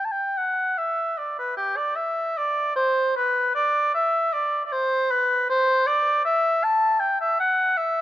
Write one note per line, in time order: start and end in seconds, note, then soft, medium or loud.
0.05 0.13 A5 medium
0.12 0.39 G5 medium
0.37 0.79 F#5 medium
0.78 1.19 E5 medium
1.18 1.38 D5 medium
1.38 1.56 B4 medium
1.57 1.78 G4 medium
1.77 1.97 D5 medium
1.95 2.39 E5 medium
2.37 2.75 D5 medium
2.76 3.15 C5 medium
3.16 3.54 B4 medium
3.55 3.93 D5 medium
3.94 4.34 E5 medium
4.33 4.64 D5 medium
4.65 4.74 D5 medium
4.72 5.12 C5 loud
5.11 5.49 B4 medium
5.49 5.88 C5 loud
5.87 6.24 D5 loud
6.25 6.65 E5 loud
6.64 7.01 A5 loud
7.00 7.19 G5 medium
7.21 7.39 E5 medium
7.40 7.78 F#5 medium
7.77 8.02 E5 medium